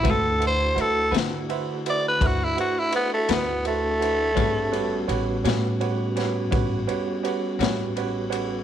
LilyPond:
<<
  \new Staff \with { instrumentName = "Upright piano" } { \time 12/8 \key a \mixolydian \tempo 4. = 56 <fis' b' c'' e''>8 <fis' b' c'' e''>8 <fis' b' c'' e''>8 <fis' b' c'' e''>8 <fis' b' c'' e''>8 <fis' b' c'' e''>8 <fis' b' c'' e''>8 <fis' b' c'' e''>8 <fis' b' c'' e''>8 <fis' b' c'' e''>8 <fis' b' c'' e''>8 <fis' b' c'' e''>8 | <g' b' cis'' fis''>8 <g' b' cis'' fis''>8 <g' b' cis'' fis''>8 <g' b' cis'' fis''>8 <g' b' cis'' fis''>8 <g' b' cis'' fis''>8 <g' b' cis'' fis''>8 <g' b' cis'' fis''>8 <g' b' cis'' fis''>8 <g' b' cis'' fis''>8 <g' b' cis'' fis''>8 <g' b' cis'' fis''>8 | }
  \new Staff \with { instrumentName = "Tenor saxophone" } { \time 12/8 \key a \mixolydian a'8 c''8 a'8 r4 d''16 b'16 fis'16 e'16 fis'16 e'16 b16 a16 b8 a4~ | a4 r1 r4 | }
  \new Staff \with { instrumentName = "Tonewheel organ" } { \time 12/8 \key a \mixolydian <a d' e' fis'>1. | <c' d' g' gis'>8 <g b cis' fis'>1~ <g b cis' fis'>4. | }
  \new Staff \with { instrumentName = "Clean electric guitar" } { \time 12/8 \key a \mixolydian <d c' fis' b'>8 r4 <d c' fis' b'>8 r2 r8 <d c' fis' b'>8 r4 | <a, g cis' fis'>8 r4 <a, g cis' fis'>8 r2 r8 <a, g cis' fis'>8 r4 | }
  \new Staff \with { instrumentName = "Upright bass" } { \clef bass \time 12/8 \key a \mixolydian d,4 d,8 d4. d,8 r4 d,4. | a,,4 a,,8 a,4. a,,8 r4 a,,4. | }
  \new DrumStaff \with { instrumentName = "Drums" } \drummode { \time 12/8 <bd cymr>8 cymr8 cymr8 <cymr sn>8 cymr8 cymr8 <bd cymr>8 cymr8 cymr8 <cymr sn>8 cymr8 cymr8 | <bd cymr>8 cymr8 cymr8 <cymr sn>8 cymr8 <cymr sn>8 <bd cymr>8 cymr8 cymr8 <cymr sn>8 cymr8 cymr8 | }
>>